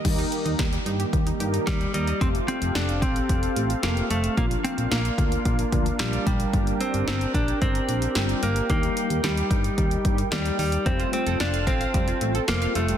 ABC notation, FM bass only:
X:1
M:4/4
L:1/16
Q:1/4=111
K:Fmix
V:1 name="FM bass" clef=bass
E,,2 z E,, E,,2 G,,2 E,,2 G,,2 E,,2 E,,2 | F,,,2 z F,,, F,,,2 A,,,2 F,,,2 A,,,2 F,,,2 F,,,2 | B,,,2 z B,,, B,,,2 D,,2 B,,,2 D,,2 B,,,2 B,,,2 | G,,,2 z G,,, G,,,2 B,,,2 G,,,2 B,,,2 G,,,2 G,,,2 |
E,,2 z E,, E,,2 G,,2 E,,2 G,,2 E,,2 E,,2 | F,,,2 z F,,, F,,,2 A,,,2 F,,,2 A,,,2 F,,,2 F,,,2 |]